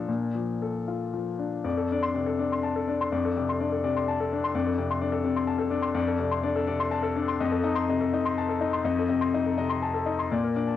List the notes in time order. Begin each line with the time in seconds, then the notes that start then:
Already playing: F3 D4
0.09 A#2
0.35 F3
0.62 A4
0.88 F4
1.13 F3
1.39 D4
1.64 F2 D5
1.77 A4
1.92 D4 D5
2.02 C6
2.14 C3 D5
2.26 A4
2.39 D4 D5
2.52 C6
2.63 A5
2.76 A4
2.87 D4 D5
3.01 C6
3.12 F2 D5
3.25 A4
3.37 C3 D5
3.49 C6
3.60 D4 D5
3.72 A4
3.84 C3 D5
3.97 C6
4.08 A5
4.20 A4
4.32 D4 D5
4.44 C6
4.55 F2 D5
4.66 A4
4.78 C3 D5
4.91 C6
5.02 D4 D5
5.12 A4
5.24 C3 D5
5.36 C6
5.47 A5
5.58 A4
5.70 D4 D5
5.82 C6
5.95 F2 D5
6.08 A4
6.19 C3 D5
6.32 C6
6.43 D4 D5
6.56 A4
6.67 C3 D5
6.80 C6
6.91 A5
7.03 A4
7.16 D4 D5
7.28 C6
7.40 F2 D#5
7.52 A4
7.64 D#4 D#5
7.75 C6
7.89 C3 D#5
8.01 A4
8.13 D#4 D#5
8.25 C6
8.38 A5
8.49 A4
8.61 D#4 D#5
8.73 C6
8.84 F2 D#5
8.99 A4
9.09 C3 D#5
9.21 C6
9.34 D#4 D#5
9.46 A4
9.58 C3 D#5
9.70 C6
9.82 A5
9.94 A4
10.06 D#4 D#5
10.19 C6
10.32 A#2 D5
10.44 A#4
10.56 D4 D5
10.68 A5